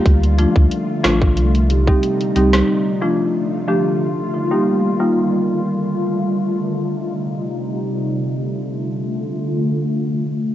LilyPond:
<<
  \new Staff \with { instrumentName = "Marimba" } { \time 4/4 \key d \phrygian \tempo 4 = 91 r8 <f a d' f'>16 r8. <f a d' f'>16 r8. <ees' g'>16 <g c' ees' g'>16 r8 <g c' ees' g'>16 r16 | r8 <f a d' f'>16 r8. <f a d' g'>16 r8. <ees' f'>16 <g bes ees' g'>16 r8 <g bes ees' f'>16 r16 | r1 | r1 | }
  \new Staff \with { instrumentName = "Ambient pad" } { \clef bass \time 4/4 \key d \phrygian << { f'2 ees'2 | f'1 | f'2 ees'2 | <d a f'>1 | } \\ { <d a>2 <c g>2 | <d a>2 <ees g>2 | <d a>2 <c g>2 | r1 | } >> }
  \new Staff \with { instrumentName = "Sub bass" } { \clef bass \time 4/4 \key d \phrygian d,8. d,16 r8 a,,8 c,4 r8 c,8 | r1 | r1 | r1 | }
  \new DrumStaff \with { instrumentName = "Drums" } \drummode { \time 4/4 <hh bd>16 hh16 hh16 bd16 hh8 <hh ss sn>16 bd16 hh16 hh16 hh16 bd16 hh16 hh16 hh16 <ss sn>16 | r4 r4 r4 r4 | r4 r4 r4 r4 | r4 r4 r4 r4 | }
>>